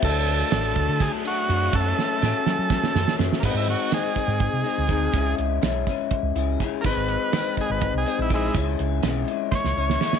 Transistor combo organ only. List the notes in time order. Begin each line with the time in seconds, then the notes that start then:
0.05 A4
1.01 G#4
1.27 F#4
1.75 A4
3.40 A#3
3.45 B3
3.57 E4
3.70 F#4
3.94 G#4
6.81 A#4
6.86 B4
7.61 G#4
7.71 B4
7.98 G#4
8.22 E4
8.34 G#3 E4
9.51 C5 C#5